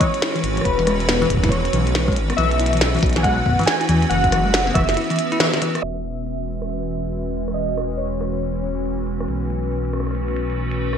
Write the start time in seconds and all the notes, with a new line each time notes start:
Already playing: E3 G#3 C#4 F#4 B4
0.00 E3 C#5, kick, closed hi-hat
0.14 closed hi-hat
0.22 E4, snare, closed hi-hat
0.36 E3, closed hi-hat
0.44 G#1, closed hi-hat
0.57 E3, closed hi-hat
0.61 B4, cross-stick
0.65 E1, kick, closed hi-hat
0.79 E3, closed hi-hat
0.87 G#3, cross-stick, closed hi-hat
1.00 closed hi-hat
1.09 B3, snare, closed hi-hat
1.22 E3, closed hi-hat
1.30 E1, kick, closed hi-hat
1.35 kick
1.37 kick
1.43 E4, kick, snare, closed hi-hat
1.49 E3 C#5, kick, closed hi-hat
1.65 closed hi-hat
1.73 B1 E3, closed hi-hat
1.87 closed hi-hat
1.95 E3, snare, closed hi-hat
2.08 G#3, kick
2.12 G#1, closed hi-hat
2.16 closed hi-hat
2.30 B3, cross-stick, closed hi-hat
2.37 B1 E3 A3 F#4 E5, closed hi-hat
2.51 closed hi-hat
2.60 E4, closed hi-hat
2.66 closed hi-hat
2.73 E3, closed hi-hat
2.77 closed hi-hat
2.81 snare, closed hi-hat
2.95 E3, closed hi-hat
2.97 closed hi-hat
2.99 closed hi-hat
3.01 closed hi-hat
3.03 B1, kick, closed hi-hat
3.06 closed hi-hat
3.09 closed hi-hat
3.13 snare, closed hi-hat
3.16 E3 G#5, closed hi-hat
3.23 G#3 F#5, kick, closed hi-hat
3.46 B3, kick
3.49 kick
3.53 kick
3.56 kick, closed hi-hat
3.59 E3, kick
3.61 kick, closed hi-hat
3.63 kick, closed hi-hat
3.65 G#5, kick, snare, closed hi-hat
3.67 closed hi-hat
3.81 E4, closed hi-hat
3.89 E2 E3, closed hi-hat
4.02 closed hi-hat
4.09 F#1 E3 B3 F#5, closed hi-hat
4.24 kick, closed hi-hat
4.32 E3, cross-stick, closed hi-hat
4.46 G#3
4.54 snare, closed hi-hat
4.67 B3, closed hi-hat
4.74 F#1 E3 E5, kick, cross-stick, closed hi-hat
4.89 snare, closed hi-hat
4.94 closed hi-hat
4.97 E4, closed hi-hat
5.01 closed hi-hat
5.04 closed hi-hat
5.10 E3, closed hi-hat
5.16 closed hi-hat
5.19 closed hi-hat
5.32 E4, closed hi-hat
5.40 E3, snare, closed hi-hat
5.54 D#3, snare, closed hi-hat
5.62 E3, closed hi-hat
5.75 cross-stick, closed hi-hat
5.82 E1 E3 G#3 C#4 F#4 B4 E5, closed hi-hat
5.97 closed hi-hat
6.05 closed hi-hat
6.18 closed hi-hat
6.27 closed hi-hat
6.48 closed hi-hat
6.62 cross-stick, closed hi-hat
6.64 closed hi-hat
6.66 closed hi-hat
6.68 closed hi-hat
6.70 closed hi-hat
6.73 closed hi-hat
6.77 closed hi-hat
6.80 closed hi-hat
6.83 closed hi-hat
6.91 closed hi-hat
7.05 closed hi-hat
7.07 closed hi-hat
7.09 closed hi-hat
7.11 closed hi-hat
7.13 closed hi-hat
7.16 closed hi-hat
7.19 closed hi-hat
7.23 closed hi-hat
7.26 closed hi-hat
7.34 closed hi-hat
7.48 cross-stick, closed hi-hat
7.54 D#5, closed hi-hat
7.69 closed hi-hat
7.77 cross-stick, closed hi-hat
7.85 closed hi-hat
7.91 closed hi-hat
7.97 C#5, closed hi-hat
8.13 closed hi-hat
8.21 cross-stick, closed hi-hat
8.34 closed hi-hat
8.56 closed hi-hat
8.64 closed hi-hat
8.77 closed hi-hat
8.86 closed hi-hat
8.99 closed hi-hat
9.07 closed hi-hat
9.20 cross-stick, closed hi-hat
9.29 B1 A3, closed hi-hat
9.42 closed hi-hat
9.47 closed hi-hat
9.50 closed hi-hat
9.64 closed hi-hat
9.72 closed hi-hat
9.85 closed hi-hat
9.93 cross-stick, closed hi-hat
10.00 cross-stick
10.07 cross-stick, closed hi-hat
10.11 cross-stick
10.15 closed hi-hat
10.28 closed hi-hat
10.36 closed hi-hat
10.50 closed hi-hat
10.71 closed hi-hat
10.93 cross-stick